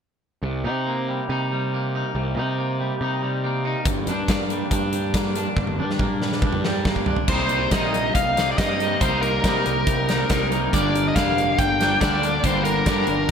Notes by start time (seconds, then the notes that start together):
0.42 C2 C3
0.64 C3 D#4
0.86 A#3
1.09 G3
1.29 C3 D#4
1.52 G3
1.74 A#3
1.95 D#4
2.15 C2 C3
2.35 C3 D#4
2.58 A#3
2.80 G3
3.01 C3 D#4
3.22 G3
3.44 A#3
3.65 D#4
3.85 G1 G2, kick, closed hi-hat
4.07 G2 D4, closed hi-hat
4.28 A#3, kick, snare, closed hi-hat
4.50 G3, closed hi-hat
4.71 G2 D4, kick, closed hi-hat
4.93 G3, closed hi-hat
5.14 A#3, kick, snare, closed hi-hat
5.35 D4, closed hi-hat
5.56 G1 G2, kick
5.67 high tom
5.78 G2 D4
5.90 snare
5.99 A#3, kick, mid tom
6.22 G3, snare
6.33 snare
6.42 G2 D4, kick
6.52 mid tom
6.65 G3, snare
6.85 A#3, kick, snare
6.96 kick
7.06 D4, floor tom
7.16 floor tom
7.28 C2 C3 G3 A#3 C5, kick, crash
7.32 D#4
7.49 closed hi-hat
7.71 A#1 C3 G3 A#3 D#4 D#5, kick, snare, closed hi-hat
7.94 closed hi-hat
8.15 C2 F5, kick, closed hi-hat
8.36 G3 A#3 D#4, snare, closed hi-hat
8.52 D5
8.58 G2 C3 G3 A#3 D#4 D#5, kick, snare, closed hi-hat
8.80 G3 A#3 D#4, closed hi-hat
9.00 C2 C3 G3 A#3 D#4 C5, kick, closed hi-hat
9.22 A#4, closed hi-hat
9.44 C3 G3 A#3 D#4, kick, snare, closed hi-hat
9.66 C2, closed hi-hat
9.87 C2, kick, closed hi-hat
10.09 G3 A#3 D#4, snare, closed hi-hat
10.29 C2 C3 G3 A#3 D#4, kick, snare, closed hi-hat
10.51 G3 A#3 D#4, closed hi-hat
10.73 G1 G2 D3 G3 A#3 D4 D5, kick, closed hi-hat
10.95 closed hi-hat
11.08 D#5
11.16 F1 G2 D3 G3 A#3 D4 F5, kick, snare, closed hi-hat
11.38 closed hi-hat
11.58 G1 G5, kick, closed hi-hat
11.80 G3 A#3 D4, snare, closed hi-hat
12.01 D2 D3 G3 A#3 D4 D5, kick, snare, closed hi-hat
12.22 G3 A#3 D4, closed hi-hat
12.43 G1 G2 D3 G3 A#3 D4 C5, kick, closed hi-hat
12.64 A#4, closed hi-hat
12.86 G2 D3 G3 A#3 D4, kick, snare, closed hi-hat
13.07 G1, closed hi-hat